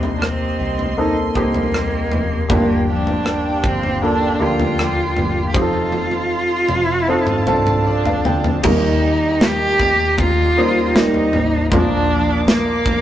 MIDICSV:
0, 0, Header, 1, 7, 480
1, 0, Start_track
1, 0, Tempo, 762389
1, 1571, Time_signature, 4, 2, 24, 8
1, 3974, Tempo, 771208
1, 8145, End_track
2, 0, Start_track
2, 0, Title_t, "String section"
2, 0, Program_c, 0, 48
2, 0, Note_on_c, 0, 58, 60
2, 0, Note_on_c, 0, 75, 68
2, 0, Note_on_c, 0, 84, 85
2, 1546, Note_off_c, 0, 58, 0
2, 1555, Note_off_c, 0, 75, 0
2, 1556, Note_off_c, 0, 84, 0
2, 1574, Note_on_c, 0, 67, 86
2, 1576, Note_on_c, 0, 77, 68
2, 1576, Note_on_c, 0, 79, 88
2, 3474, Note_off_c, 0, 67, 0
2, 3475, Note_off_c, 0, 77, 0
2, 3475, Note_off_c, 0, 79, 0
2, 3488, Note_on_c, 0, 81, 92
2, 3491, Note_on_c, 0, 65, 80
2, 3492, Note_on_c, 0, 77, 81
2, 5403, Note_off_c, 0, 81, 0
2, 5404, Note_off_c, 0, 65, 0
2, 5405, Note_off_c, 0, 77, 0
2, 5422, Note_on_c, 0, 75, 79
2, 5423, Note_on_c, 0, 82, 91
2, 5424, Note_on_c, 0, 67, 81
2, 7319, Note_off_c, 0, 75, 0
2, 7320, Note_off_c, 0, 67, 0
2, 7320, Note_off_c, 0, 82, 0
2, 7340, Note_on_c, 0, 86, 99
2, 7343, Note_on_c, 0, 58, 83
2, 7345, Note_on_c, 0, 77, 70
2, 8145, Note_off_c, 0, 58, 0
2, 8145, Note_off_c, 0, 77, 0
2, 8145, Note_off_c, 0, 86, 0
2, 8145, End_track
3, 0, Start_track
3, 0, Title_t, "Felt piano"
3, 0, Program_c, 1, 0
3, 0, Control_c, 1, 64, 127
3, 0, Note_on_c, 1, 48, 57
3, 0, Note_on_c, 1, 58, 71
3, 0, Note_on_c, 1, 60, 60
3, 0, Note_on_c, 1, 63, 53
3, 0, Note_on_c, 1, 67, 70
3, 351, Note_off_c, 1, 48, 0
3, 566, Note_off_c, 1, 58, 0
3, 567, Note_off_c, 1, 60, 0
3, 568, Note_off_c, 1, 63, 0
3, 570, Note_off_c, 1, 67, 0
3, 612, Note_on_c, 1, 58, 58
3, 614, Note_on_c, 1, 60, 54
3, 617, Note_on_c, 1, 63, 53
3, 618, Note_on_c, 1, 69, 66
3, 840, Note_off_c, 1, 58, 0
3, 841, Note_off_c, 1, 60, 0
3, 842, Note_off_c, 1, 63, 0
3, 843, Note_off_c, 1, 69, 0
3, 851, Note_on_c, 1, 58, 63
3, 857, Note_on_c, 1, 60, 56
3, 857, Note_on_c, 1, 63, 59
3, 858, Note_on_c, 1, 67, 66
3, 1534, Note_off_c, 1, 58, 0
3, 1537, Note_off_c, 1, 60, 0
3, 1537, Note_off_c, 1, 63, 0
3, 1538, Note_off_c, 1, 67, 0
3, 1564, Note_on_c, 1, 58, 64
3, 1569, Note_on_c, 1, 62, 68
3, 1569, Note_on_c, 1, 65, 62
3, 1570, Note_on_c, 1, 43, 58
3, 1571, Note_on_c, 1, 67, 76
3, 1579, Control_c, 1, 64, 0
3, 1704, Control_c, 1, 64, 127
3, 2263, Note_off_c, 1, 43, 0
3, 2478, Note_off_c, 1, 58, 0
3, 2480, Note_off_c, 1, 62, 0
3, 2480, Note_off_c, 1, 65, 0
3, 2481, Note_off_c, 1, 67, 0
3, 2530, Note_on_c, 1, 58, 64
3, 2532, Note_on_c, 1, 62, 62
3, 2532, Note_on_c, 1, 65, 56
3, 2537, Note_on_c, 1, 69, 66
3, 2756, Note_off_c, 1, 58, 0
3, 2759, Note_off_c, 1, 62, 0
3, 2759, Note_off_c, 1, 65, 0
3, 2761, Note_off_c, 1, 69, 0
3, 2766, Note_on_c, 1, 58, 71
3, 2768, Note_on_c, 1, 62, 57
3, 2770, Note_on_c, 1, 65, 67
3, 2770, Note_on_c, 1, 67, 71
3, 3453, Note_off_c, 1, 58, 0
3, 3455, Note_off_c, 1, 62, 0
3, 3456, Note_off_c, 1, 65, 0
3, 3456, Note_off_c, 1, 67, 0
3, 3486, Note_on_c, 1, 60, 75
3, 3492, Note_on_c, 1, 63, 64
3, 3494, Note_on_c, 1, 67, 58
3, 3495, Note_on_c, 1, 65, 65
3, 3500, Control_c, 1, 64, 0
3, 3533, Note_off_c, 1, 67, 0
3, 3535, Note_on_c, 1, 69, 74
3, 3593, Control_c, 1, 64, 127
3, 4403, Note_off_c, 1, 60, 0
3, 4406, Note_off_c, 1, 63, 0
3, 4407, Note_off_c, 1, 65, 0
3, 4427, Note_off_c, 1, 69, 0
3, 4453, Note_on_c, 1, 60, 85
3, 4456, Note_on_c, 1, 63, 73
3, 4458, Note_on_c, 1, 65, 80
3, 4461, Note_on_c, 1, 69, 81
3, 4683, Note_off_c, 1, 60, 0
3, 4685, Note_off_c, 1, 63, 0
3, 4686, Note_off_c, 1, 65, 0
3, 4687, Note_off_c, 1, 69, 0
3, 4694, Note_on_c, 1, 60, 90
3, 4699, Note_on_c, 1, 65, 75
3, 4699, Note_on_c, 1, 69, 94
3, 4941, Note_on_c, 1, 74, 72
3, 5053, Note_off_c, 1, 74, 0
3, 5062, Note_on_c, 1, 77, 73
3, 5174, Note_off_c, 1, 77, 0
3, 5186, Note_on_c, 1, 79, 70
3, 5387, Note_off_c, 1, 60, 0
3, 5389, Note_off_c, 1, 69, 0
3, 5390, Note_off_c, 1, 65, 0
3, 5409, Note_off_c, 1, 79, 0
3, 5419, Note_on_c, 1, 55, 74
3, 5420, Note_on_c, 1, 58, 61
3, 5421, Note_on_c, 1, 63, 61
3, 5421, Note_on_c, 1, 67, 63
3, 5422, Note_on_c, 1, 51, 59
3, 5426, Note_on_c, 1, 70, 70
3, 5433, Control_c, 1, 64, 0
3, 5521, Control_c, 1, 64, 127
3, 6120, Note_off_c, 1, 51, 0
3, 6335, Note_off_c, 1, 55, 0
3, 6336, Note_off_c, 1, 58, 0
3, 6336, Note_off_c, 1, 63, 0
3, 6336, Note_off_c, 1, 67, 0
3, 6339, Note_off_c, 1, 70, 0
3, 6623, Note_on_c, 1, 55, 70
3, 6628, Note_on_c, 1, 58, 72
3, 6630, Note_on_c, 1, 63, 71
3, 6630, Note_on_c, 1, 67, 64
3, 6632, Note_on_c, 1, 72, 80
3, 6851, Note_off_c, 1, 55, 0
3, 6853, Note_off_c, 1, 58, 0
3, 6854, Note_off_c, 1, 63, 0
3, 6854, Note_off_c, 1, 67, 0
3, 6855, Note_off_c, 1, 72, 0
3, 6861, Note_on_c, 1, 55, 65
3, 6864, Note_on_c, 1, 63, 55
3, 6865, Note_on_c, 1, 58, 62
3, 6865, Note_on_c, 1, 70, 70
3, 6868, Note_on_c, 1, 67, 57
3, 7314, Note_off_c, 1, 55, 0
3, 7316, Note_off_c, 1, 58, 0
3, 7316, Note_off_c, 1, 63, 0
3, 7316, Note_off_c, 1, 70, 0
3, 7318, Note_off_c, 1, 67, 0
3, 7333, Note_on_c, 1, 53, 71
3, 7333, Note_on_c, 1, 58, 67
3, 7338, Note_on_c, 1, 46, 69
3, 7338, Note_on_c, 1, 65, 67
3, 7339, Note_on_c, 1, 62, 62
3, 7342, Note_on_c, 1, 70, 77
3, 7349, Control_c, 1, 64, 0
3, 7472, Control_c, 1, 64, 127
3, 8026, Note_off_c, 1, 46, 0
3, 8145, Note_off_c, 1, 53, 0
3, 8145, Note_off_c, 1, 58, 0
3, 8145, Note_off_c, 1, 62, 0
3, 8145, Note_off_c, 1, 65, 0
3, 8145, Note_off_c, 1, 70, 0
3, 8145, End_track
4, 0, Start_track
4, 0, Title_t, "Cello"
4, 0, Program_c, 2, 42
4, 0, Note_on_c, 2, 60, 76
4, 74, Note_off_c, 2, 60, 0
4, 102, Note_on_c, 2, 62, 57
4, 156, Note_on_c, 2, 60, 82
4, 165, Note_off_c, 2, 62, 0
4, 624, Note_off_c, 2, 60, 0
4, 630, Note_on_c, 2, 63, 83
4, 734, Note_off_c, 2, 63, 0
4, 873, Note_on_c, 2, 58, 82
4, 1556, Note_off_c, 2, 58, 0
4, 1592, Note_on_c, 2, 58, 88
4, 1805, Note_off_c, 2, 58, 0
4, 1837, Note_on_c, 2, 62, 84
4, 2309, Note_on_c, 2, 60, 95
4, 2318, Note_off_c, 2, 62, 0
4, 2539, Note_off_c, 2, 60, 0
4, 2553, Note_on_c, 2, 62, 100
4, 2794, Note_on_c, 2, 65, 88
4, 2804, Note_off_c, 2, 62, 0
4, 3453, Note_off_c, 2, 65, 0
4, 3457, Note_on_c, 2, 67, 68
4, 3505, Note_on_c, 2, 65, 94
4, 3515, Note_off_c, 2, 67, 0
4, 4703, Note_off_c, 2, 65, 0
4, 4722, Note_on_c, 2, 62, 82
4, 5412, Note_off_c, 2, 62, 0
4, 5444, Note_on_c, 2, 63, 97
4, 5924, Note_on_c, 2, 67, 113
4, 5933, Note_off_c, 2, 63, 0
4, 6395, Note_off_c, 2, 67, 0
4, 6402, Note_on_c, 2, 65, 108
4, 6876, Note_on_c, 2, 63, 99
4, 6886, Note_off_c, 2, 65, 0
4, 7342, Note_off_c, 2, 63, 0
4, 7345, Note_on_c, 2, 62, 101
4, 7793, Note_off_c, 2, 62, 0
4, 7825, Note_on_c, 2, 58, 99
4, 8145, Note_off_c, 2, 58, 0
4, 8145, End_track
5, 0, Start_track
5, 0, Title_t, "Steel-string acoustic guitar"
5, 0, Program_c, 3, 25
5, 0, Note_on_c, 3, 58, 39
5, 0, Note_on_c, 3, 63, 44
5, 0, Note_on_c, 3, 67, 55
5, 370, Note_off_c, 3, 67, 0
5, 372, Note_on_c, 3, 67, 50
5, 377, Note_off_c, 3, 63, 0
5, 385, Note_on_c, 3, 63, 44
5, 390, Note_off_c, 3, 58, 0
5, 393, Note_on_c, 3, 58, 42
5, 846, Note_off_c, 3, 67, 0
5, 848, Note_on_c, 3, 67, 52
5, 850, Note_off_c, 3, 63, 0
5, 857, Note_on_c, 3, 63, 48
5, 863, Note_off_c, 3, 58, 0
5, 866, Note_on_c, 3, 58, 46
5, 1087, Note_on_c, 3, 55, 47
5, 1089, Note_off_c, 3, 58, 0
5, 1090, Note_off_c, 3, 67, 0
5, 1094, Note_off_c, 3, 63, 0
5, 1097, Note_on_c, 3, 58, 51
5, 1101, Note_on_c, 3, 63, 62
5, 1108, Note_on_c, 3, 67, 55
5, 1320, Note_off_c, 3, 67, 0
5, 1327, Note_on_c, 3, 67, 45
5, 1329, Note_off_c, 3, 55, 0
5, 1330, Note_off_c, 3, 63, 0
5, 1334, Note_off_c, 3, 58, 0
5, 1337, Note_on_c, 3, 63, 44
5, 1347, Note_on_c, 3, 58, 39
5, 1569, Note_off_c, 3, 67, 0
5, 1572, Note_on_c, 3, 43, 74
5, 1574, Note_off_c, 3, 58, 0
5, 1574, Note_off_c, 3, 63, 0
5, 1577, Note_on_c, 3, 50, 81
5, 1581, Note_on_c, 3, 53, 75
5, 1582, Note_on_c, 3, 58, 73
5, 1586, Note_on_c, 3, 62, 72
5, 1586, Note_on_c, 3, 67, 81
5, 1806, Note_off_c, 3, 67, 0
5, 1811, Note_off_c, 3, 43, 0
5, 1813, Note_off_c, 3, 50, 0
5, 1814, Note_on_c, 3, 67, 54
5, 1815, Note_off_c, 3, 53, 0
5, 1815, Note_off_c, 3, 62, 0
5, 1816, Note_off_c, 3, 58, 0
5, 1823, Note_on_c, 3, 62, 43
5, 1827, Note_on_c, 3, 58, 48
5, 1833, Note_on_c, 3, 53, 47
5, 2280, Note_off_c, 3, 67, 0
5, 2286, Note_off_c, 3, 62, 0
5, 2287, Note_on_c, 3, 67, 52
5, 2294, Note_off_c, 3, 58, 0
5, 2294, Note_on_c, 3, 62, 47
5, 2302, Note_on_c, 3, 58, 45
5, 2305, Note_off_c, 3, 53, 0
5, 2308, Note_on_c, 3, 53, 38
5, 2762, Note_off_c, 3, 67, 0
5, 2767, Note_off_c, 3, 62, 0
5, 2770, Note_on_c, 3, 67, 51
5, 2775, Note_on_c, 3, 62, 49
5, 2776, Note_off_c, 3, 58, 0
5, 2782, Note_on_c, 3, 58, 46
5, 2787, Note_off_c, 3, 53, 0
5, 2790, Note_on_c, 3, 53, 42
5, 3004, Note_off_c, 3, 53, 0
5, 3011, Note_off_c, 3, 67, 0
5, 3011, Note_on_c, 3, 53, 54
5, 3013, Note_off_c, 3, 58, 0
5, 3013, Note_off_c, 3, 62, 0
5, 3020, Note_on_c, 3, 58, 53
5, 3025, Note_on_c, 3, 62, 52
5, 3029, Note_on_c, 3, 67, 57
5, 3242, Note_off_c, 3, 67, 0
5, 3250, Note_off_c, 3, 62, 0
5, 3250, Note_on_c, 3, 67, 52
5, 3252, Note_off_c, 3, 53, 0
5, 3256, Note_off_c, 3, 58, 0
5, 3257, Note_on_c, 3, 62, 47
5, 3263, Note_on_c, 3, 58, 42
5, 3267, Note_on_c, 3, 53, 43
5, 3483, Note_off_c, 3, 53, 0
5, 3490, Note_off_c, 3, 67, 0
5, 3490, Note_on_c, 3, 53, 73
5, 3494, Note_off_c, 3, 58, 0
5, 3494, Note_off_c, 3, 62, 0
5, 3496, Note_on_c, 3, 60, 84
5, 3499, Note_on_c, 3, 63, 90
5, 3503, Note_on_c, 3, 69, 81
5, 3724, Note_off_c, 3, 69, 0
5, 3731, Note_off_c, 3, 53, 0
5, 3732, Note_on_c, 3, 69, 50
5, 3734, Note_off_c, 3, 60, 0
5, 3735, Note_off_c, 3, 63, 0
5, 3743, Note_on_c, 3, 63, 46
5, 3750, Note_on_c, 3, 60, 44
5, 4202, Note_off_c, 3, 69, 0
5, 4210, Note_on_c, 3, 69, 60
5, 4217, Note_off_c, 3, 63, 0
5, 4220, Note_on_c, 3, 63, 50
5, 4222, Note_off_c, 3, 60, 0
5, 4230, Note_on_c, 3, 60, 51
5, 4689, Note_off_c, 3, 69, 0
5, 4696, Note_on_c, 3, 69, 53
5, 4705, Note_off_c, 3, 60, 0
5, 4715, Note_off_c, 3, 63, 0
5, 4716, Note_on_c, 3, 60, 52
5, 4939, Note_off_c, 3, 69, 0
5, 4941, Note_on_c, 3, 53, 59
5, 4942, Note_off_c, 3, 60, 0
5, 4949, Note_on_c, 3, 60, 62
5, 4961, Note_on_c, 3, 69, 61
5, 5173, Note_off_c, 3, 69, 0
5, 5181, Note_on_c, 3, 69, 58
5, 5183, Note_off_c, 3, 53, 0
5, 5187, Note_off_c, 3, 60, 0
5, 5201, Note_on_c, 3, 60, 46
5, 5420, Note_on_c, 3, 51, 74
5, 5423, Note_off_c, 3, 69, 0
5, 5423, Note_on_c, 3, 55, 71
5, 5427, Note_off_c, 3, 60, 0
5, 5430, Note_on_c, 3, 58, 84
5, 5432, Note_on_c, 3, 63, 77
5, 5435, Note_on_c, 3, 67, 86
5, 5653, Note_off_c, 3, 67, 0
5, 5660, Note_on_c, 3, 67, 47
5, 5663, Note_off_c, 3, 51, 0
5, 5664, Note_off_c, 3, 63, 0
5, 5665, Note_off_c, 3, 55, 0
5, 5668, Note_off_c, 3, 58, 0
5, 5672, Note_on_c, 3, 63, 50
5, 5682, Note_on_c, 3, 58, 39
5, 5903, Note_off_c, 3, 67, 0
5, 5903, Note_on_c, 3, 55, 52
5, 5904, Note_off_c, 3, 58, 0
5, 5907, Note_off_c, 3, 63, 0
5, 5911, Note_on_c, 3, 58, 58
5, 5915, Note_on_c, 3, 63, 59
5, 5924, Note_on_c, 3, 67, 57
5, 6136, Note_off_c, 3, 67, 0
5, 6143, Note_on_c, 3, 67, 53
5, 6145, Note_off_c, 3, 55, 0
5, 6145, Note_off_c, 3, 63, 0
5, 6149, Note_off_c, 3, 58, 0
5, 6153, Note_on_c, 3, 63, 47
5, 6161, Note_on_c, 3, 58, 39
5, 6857, Note_on_c, 3, 55, 57
5, 6862, Note_off_c, 3, 58, 0
5, 6862, Note_off_c, 3, 67, 0
5, 6863, Note_off_c, 3, 63, 0
5, 6864, Note_on_c, 3, 58, 55
5, 6871, Note_on_c, 3, 63, 51
5, 6877, Note_on_c, 3, 67, 59
5, 7087, Note_off_c, 3, 67, 0
5, 7094, Note_on_c, 3, 67, 48
5, 7098, Note_off_c, 3, 55, 0
5, 7099, Note_off_c, 3, 63, 0
5, 7102, Note_off_c, 3, 58, 0
5, 7106, Note_on_c, 3, 63, 46
5, 7115, Note_on_c, 3, 58, 42
5, 7332, Note_on_c, 3, 46, 75
5, 7334, Note_off_c, 3, 58, 0
5, 7335, Note_on_c, 3, 50, 74
5, 7336, Note_off_c, 3, 67, 0
5, 7339, Note_off_c, 3, 63, 0
5, 7339, Note_on_c, 3, 53, 82
5, 7342, Note_on_c, 3, 58, 86
5, 7342, Note_on_c, 3, 62, 94
5, 7346, Note_on_c, 3, 70, 91
5, 7562, Note_off_c, 3, 70, 0
5, 7570, Note_on_c, 3, 70, 51
5, 7571, Note_off_c, 3, 62, 0
5, 7573, Note_off_c, 3, 46, 0
5, 7575, Note_off_c, 3, 50, 0
5, 7577, Note_off_c, 3, 53, 0
5, 7578, Note_off_c, 3, 58, 0
5, 7578, Note_on_c, 3, 62, 47
5, 7585, Note_on_c, 3, 58, 49
5, 7590, Note_on_c, 3, 53, 48
5, 7804, Note_off_c, 3, 53, 0
5, 7810, Note_off_c, 3, 58, 0
5, 7811, Note_off_c, 3, 70, 0
5, 7811, Note_on_c, 3, 53, 47
5, 7815, Note_off_c, 3, 62, 0
5, 7817, Note_on_c, 3, 58, 51
5, 7824, Note_on_c, 3, 62, 54
5, 7830, Note_on_c, 3, 70, 58
5, 8041, Note_off_c, 3, 70, 0
5, 8048, Note_off_c, 3, 62, 0
5, 8049, Note_on_c, 3, 70, 55
5, 8050, Note_off_c, 3, 53, 0
5, 8053, Note_off_c, 3, 58, 0
5, 8055, Note_on_c, 3, 62, 50
5, 8061, Note_on_c, 3, 58, 46
5, 8067, Note_on_c, 3, 53, 43
5, 8145, Note_off_c, 3, 53, 0
5, 8145, Note_off_c, 3, 58, 0
5, 8145, Note_off_c, 3, 62, 0
5, 8145, Note_off_c, 3, 70, 0
5, 8145, End_track
6, 0, Start_track
6, 0, Title_t, "Fingered electric bass"
6, 0, Program_c, 4, 33
6, 0, Note_on_c, 4, 36, 102
6, 349, Note_off_c, 4, 36, 0
6, 376, Note_on_c, 4, 36, 88
6, 828, Note_off_c, 4, 36, 0
6, 853, Note_on_c, 4, 36, 95
6, 1307, Note_off_c, 4, 36, 0
6, 1335, Note_on_c, 4, 29, 70
6, 1556, Note_off_c, 4, 29, 0
6, 1573, Note_on_c, 4, 31, 98
6, 2265, Note_off_c, 4, 31, 0
6, 2290, Note_on_c, 4, 31, 104
6, 2745, Note_off_c, 4, 31, 0
6, 2772, Note_on_c, 4, 38, 92
6, 3227, Note_off_c, 4, 38, 0
6, 3255, Note_on_c, 4, 31, 84
6, 3477, Note_off_c, 4, 31, 0
6, 3491, Note_on_c, 4, 29, 90
6, 4188, Note_off_c, 4, 29, 0
6, 4210, Note_on_c, 4, 29, 102
6, 4670, Note_off_c, 4, 29, 0
6, 4696, Note_on_c, 4, 36, 96
6, 5158, Note_off_c, 4, 36, 0
6, 5180, Note_on_c, 4, 38, 78
6, 5406, Note_off_c, 4, 38, 0
6, 5421, Note_on_c, 4, 39, 101
6, 6359, Note_off_c, 4, 39, 0
6, 6386, Note_on_c, 4, 39, 102
6, 6862, Note_off_c, 4, 39, 0
6, 6862, Note_on_c, 4, 36, 82
6, 7084, Note_off_c, 4, 36, 0
6, 7103, Note_on_c, 4, 33, 67
6, 7323, Note_off_c, 4, 33, 0
6, 7338, Note_on_c, 4, 34, 111
6, 8145, Note_off_c, 4, 34, 0
6, 8145, End_track
7, 0, Start_track
7, 0, Title_t, "Drums"
7, 18, Note_on_c, 9, 43, 59
7, 81, Note_off_c, 9, 43, 0
7, 139, Note_on_c, 9, 37, 101
7, 202, Note_off_c, 9, 37, 0
7, 498, Note_on_c, 9, 43, 46
7, 561, Note_off_c, 9, 43, 0
7, 853, Note_on_c, 9, 36, 68
7, 916, Note_off_c, 9, 36, 0
7, 972, Note_on_c, 9, 43, 65
7, 1035, Note_off_c, 9, 43, 0
7, 1098, Note_on_c, 9, 37, 104
7, 1161, Note_off_c, 9, 37, 0
7, 1332, Note_on_c, 9, 43, 63
7, 1395, Note_off_c, 9, 43, 0
7, 1573, Note_on_c, 9, 36, 103
7, 1574, Note_on_c, 9, 43, 92
7, 1636, Note_off_c, 9, 36, 0
7, 1637, Note_off_c, 9, 43, 0
7, 1933, Note_on_c, 9, 43, 59
7, 1996, Note_off_c, 9, 43, 0
7, 2051, Note_on_c, 9, 37, 91
7, 2114, Note_off_c, 9, 37, 0
7, 2290, Note_on_c, 9, 36, 89
7, 2353, Note_off_c, 9, 36, 0
7, 2414, Note_on_c, 9, 43, 51
7, 2477, Note_off_c, 9, 43, 0
7, 2893, Note_on_c, 9, 43, 69
7, 2956, Note_off_c, 9, 43, 0
7, 3017, Note_on_c, 9, 37, 103
7, 3080, Note_off_c, 9, 37, 0
7, 3252, Note_on_c, 9, 43, 62
7, 3315, Note_off_c, 9, 43, 0
7, 3490, Note_on_c, 9, 48, 47
7, 3491, Note_on_c, 9, 36, 103
7, 3553, Note_off_c, 9, 48, 0
7, 3554, Note_off_c, 9, 36, 0
7, 3608, Note_on_c, 9, 48, 37
7, 3671, Note_off_c, 9, 48, 0
7, 3729, Note_on_c, 9, 48, 58
7, 3792, Note_off_c, 9, 48, 0
7, 3849, Note_on_c, 9, 48, 49
7, 3912, Note_off_c, 9, 48, 0
7, 4207, Note_on_c, 9, 47, 74
7, 4269, Note_off_c, 9, 47, 0
7, 4568, Note_on_c, 9, 45, 69
7, 4630, Note_off_c, 9, 45, 0
7, 4694, Note_on_c, 9, 45, 82
7, 4757, Note_off_c, 9, 45, 0
7, 4817, Note_on_c, 9, 45, 78
7, 4879, Note_off_c, 9, 45, 0
7, 5059, Note_on_c, 9, 43, 74
7, 5121, Note_off_c, 9, 43, 0
7, 5181, Note_on_c, 9, 43, 86
7, 5243, Note_off_c, 9, 43, 0
7, 5301, Note_on_c, 9, 43, 85
7, 5363, Note_off_c, 9, 43, 0
7, 5420, Note_on_c, 9, 43, 110
7, 5420, Note_on_c, 9, 49, 93
7, 5422, Note_on_c, 9, 36, 109
7, 5482, Note_off_c, 9, 43, 0
7, 5482, Note_off_c, 9, 49, 0
7, 5484, Note_off_c, 9, 36, 0
7, 5904, Note_on_c, 9, 38, 110
7, 5966, Note_off_c, 9, 38, 0
7, 6142, Note_on_c, 9, 36, 88
7, 6144, Note_on_c, 9, 43, 70
7, 6204, Note_off_c, 9, 36, 0
7, 6206, Note_off_c, 9, 43, 0
7, 6380, Note_on_c, 9, 43, 67
7, 6384, Note_on_c, 9, 36, 85
7, 6442, Note_off_c, 9, 43, 0
7, 6446, Note_off_c, 9, 36, 0
7, 6865, Note_on_c, 9, 38, 116
7, 6927, Note_off_c, 9, 38, 0
7, 6980, Note_on_c, 9, 43, 56
7, 7043, Note_off_c, 9, 43, 0
7, 7098, Note_on_c, 9, 43, 69
7, 7161, Note_off_c, 9, 43, 0
7, 7338, Note_on_c, 9, 36, 105
7, 7339, Note_on_c, 9, 43, 116
7, 7400, Note_off_c, 9, 36, 0
7, 7401, Note_off_c, 9, 43, 0
7, 7814, Note_on_c, 9, 38, 112
7, 7876, Note_off_c, 9, 38, 0
7, 8048, Note_on_c, 9, 36, 91
7, 8049, Note_on_c, 9, 43, 63
7, 8110, Note_off_c, 9, 36, 0
7, 8111, Note_off_c, 9, 43, 0
7, 8145, End_track
0, 0, End_of_file